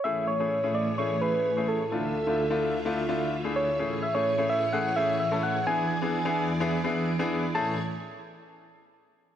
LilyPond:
<<
  \new Staff \with { instrumentName = "Soft synth lead" } { \time 4/4 \key a \major \tempo 4 = 128 e''8 cis''4 d''8 cis''8 b'4 a'8 | a'2. r8 cis''8~ | cis''8 e''16 cis''8. e''8 fis''8 e''8 e''8 fis''8 | gis''2. r4 |
a''8 r2. r8 | }
  \new Staff \with { instrumentName = "Grand piano" } { \time 4/4 \key a \major <a cis' e' gis'>8 r16 <a cis' e' gis'>16 r16 <a cis' e' gis'>8 r16 <a cis' e' gis'>16 r16 <a cis' e' gis'>8 r16 <a cis' e' gis'>8 r16 | <a d' e' f'>8 r16 <a d' e' f'>16 r16 <a d' e' f'>8 r16 <a d' e' f'>16 r16 <a d' e' f'>8 r16 <a d' e' gis'>8 r16 | <a cis' e' gis'>8 r16 <a cis' e' gis'>16 r16 <a cis' e' gis'>8 r16 <a cis' e' gis'>16 r16 <a cis' e' gis'>8 r16 <a cis' e' a'>8 r16 | <b d' e' gis'>8 r16 <b d' e' gis'>16 r16 <b d' e' gis'>8 r16 <b d' e' gis'>16 r16 <b d' e' gis'>8 r16 <b d' e' gis'>8 r16 |
<a cis' e' gis'>8 r2. r8 | }
  \new Staff \with { instrumentName = "String machine" } { \time 4/4 \key a \major << { <a, cis''>1 | <d, e''>1 | <a, cis''>1 | <e, d''>1 |
<a, e gis' cis''>8 r2. r8 | } \\ { <e gis'>1 | <d f'>1 | <e gis'>1~ | <e gis'>1 |
r1 | } >> }
>>